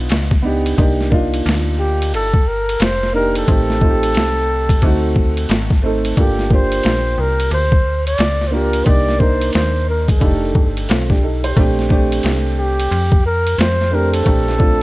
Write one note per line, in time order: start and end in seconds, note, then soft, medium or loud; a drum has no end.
0.00 0.28 B3 medium
0.00 0.29 D4 medium
0.00 0.29 D#4 medium
0.00 0.30 F4 medium
0.09 0.74 C#2 loud
0.09 snare loud
0.09 hi-hat pedal soft
0.09 ride medium
0.31 kick medium
0.31 snare soft
0.42 0.72 B3 medium
0.42 0.73 D4 medium
0.42 0.73 D#4 medium
0.42 0.74 G4 medium
0.66 ride medium
0.77 1.42 C2 loud
0.77 1.06 A#3 medium
0.77 1.07 D4 medium
0.77 1.07 D#4 medium
0.77 1.08 G4 loud
0.77 kick loud
0.77 ride medium
1.01 snare soft
1.10 2.23 A#3 medium
1.10 2.23 D4 medium
1.10 2.24 D#4 medium
1.10 2.25 F4 loud
1.10 kick medium
1.34 ride medium
1.46 2.15 D2 loud
1.46 snare medium
1.46 hi-hat pedal soft
1.46 ride medium
1.79 2.10 G4 medium
2.02 ride medium
2.13 2.77 G1 medium
2.13 2.49 A4 loud
2.13 ride medium
2.34 kick medium
2.48 2.85 A#4 loud
2.69 ride medium
2.80 3.44 F1 medium
2.80 3.15 C5 loud
2.80 snare loud
2.80 hi-hat pedal soft
2.80 ride medium
3.03 snare soft
3.13 3.42 A#3 medium
3.13 3.43 D4 medium
3.13 3.43 D#4 medium
3.13 3.34 A#4 loud
3.17 3.44 G4 medium
3.35 5.81 A4 loud
3.35 ride medium
3.46 4.17 A1 loud
3.46 3.76 A3 medium
3.46 3.77 C4 medium
3.46 3.77 D#4 medium
3.46 3.78 G4 medium
3.46 kick loud
3.46 ride medium
3.70 snare soft
3.80 4.80 A3 medium
3.80 4.81 C4 medium
3.80 4.82 D#4 medium
3.80 3.90 F4 medium
3.80 kick medium
3.90 4.87 G4 medium
4.03 ride medium
4.15 4.79 C2 loud
4.15 snare medium
4.15 hi-hat pedal soft
4.15 ride medium
4.69 kick medium
4.69 ride medium
4.82 5.46 D2 loud
4.82 5.68 A3 medium
4.82 5.68 C4 medium
4.82 5.69 D#4 medium
4.82 5.70 F#4 medium
4.82 kick medium
4.82 ride medium
5.16 kick medium
5.37 ride medium
5.49 6.14 G#1 loud
5.49 snare loud
5.49 hi-hat pedal soft
5.49 ride medium
5.70 kick medium
5.70 snare soft
5.82 6.12 A3 medium
5.82 6.12 C4 medium
5.82 6.13 D#4 medium
5.82 6.14 A4 medium
6.05 ride medium
6.16 6.81 G1 loud
6.16 6.46 A#3 medium
6.16 6.46 D4 medium
6.16 6.47 F4 medium
6.16 6.50 G4 medium
6.16 6.47 A4 medium
6.16 kick loud
6.16 ride medium
6.39 snare soft
6.50 7.62 A#3 medium
6.50 7.63 D4 medium
6.50 7.63 F4 medium
6.50 7.64 G4 medium
6.50 kick medium
6.54 7.22 C5 loud
6.72 ride medium
6.83 7.17 A#1 medium
6.83 snare medium
6.83 hi-hat pedal soft
6.83 ride medium
7.18 7.50 C2 medium
7.18 7.52 A#4 loud
7.40 ride medium
7.51 8.15 D2 medium
7.51 8.03 C5 loud
7.51 ride medium
7.72 kick medium
8.07 8.49 D5 loud
8.07 ride medium
8.18 8.83 C#2 medium
8.18 snare loud
8.18 hi-hat pedal soft
8.18 ride medium
8.41 snare soft
8.48 8.81 A#3 medium
8.48 8.81 D4 medium
8.48 8.55 C5 medium
8.53 8.82 F4 medium
8.53 8.82 G4 medium
8.53 8.88 A#4 medium
8.73 ride medium
8.84 9.51 C2 loud
8.84 9.14 A#3 medium
8.84 9.15 D4 medium
8.84 9.16 D#4 medium
8.84 9.16 G4 medium
8.84 9.21 D5 loud
8.84 kick loud
8.84 ride medium
9.09 snare soft
9.18 10.21 A#3 medium
9.18 10.19 D4 medium
9.18 10.20 D#4 medium
9.18 10.22 A#4 medium
9.18 9.53 C5 loud
9.18 kick medium
9.41 ride medium
9.53 10.19 D#2 loud
9.53 9.85 C5 medium
9.53 snare medium
9.53 hi-hat pedal soft
9.53 ride medium
9.89 10.08 A#4 medium
10.08 10.73 A4 medium
10.08 kick medium
10.08 ride medium
10.19 10.53 F1 loud
10.19 11.06 A3 medium
10.19 10.88 D4 medium
10.19 10.89 D#4 medium
10.19 kick medium
10.19 ride medium
10.23 10.90 G4 medium
10.55 10.87 G1 medium
10.55 kick loud
10.77 ride medium
10.89 11.53 B1 loud
10.89 11.09 C4 medium
10.89 11.08 F4 medium
10.89 snare loud
10.89 hi-hat pedal soft
10.89 ride medium
11.10 11.22 D4 medium
11.10 11.22 G4 medium
11.10 kick medium
11.10 snare soft
11.23 11.43 D#4 medium
11.23 11.42 A4 medium
11.44 11.58 G4 soft
11.44 11.76 C5 medium
11.44 ride medium
11.56 12.20 A#1 loud
11.56 11.85 A3 medium
11.56 11.86 C4 medium
11.56 11.86 D4 medium
11.56 11.87 G4 loud
11.56 kick loud
11.56 ride medium
11.79 snare soft
11.89 13.01 A3 medium
11.89 13.02 C4 medium
11.89 13.03 D4 medium
11.89 13.03 G4 loud
11.89 kick medium
12.12 ride medium
12.23 12.88 C2 medium
12.23 snare medium
12.23 hi-hat pedal soft
12.23 ride medium
12.59 13.22 G4 medium
12.80 ride medium
12.91 13.55 F2 medium
12.91 ride medium
13.12 kick loud
13.26 13.61 A#4 loud
13.47 ride medium
13.58 14.23 F2 medium
13.58 13.96 C5 loud
13.58 snare loud
13.58 hi-hat pedal soft
13.58 ride medium
13.81 snare soft
13.90 14.20 A3 medium
13.90 14.21 C4 medium
13.90 14.21 D4 medium
13.90 14.22 G4 medium
13.94 14.15 A#4 loud
14.14 14.83 A4 loud
14.14 ride medium
14.23 14.83 A#1 loud
14.23 14.53 A3 medium
14.23 14.54 C4 medium
14.23 14.55 D4 medium
14.23 kick loud
14.23 ride medium
14.27 14.55 G4 medium
14.48 snare soft
14.57 14.83 A3 medium
14.57 14.83 C4 medium
14.57 14.83 D4 medium
14.57 14.83 F4 medium
14.57 kick medium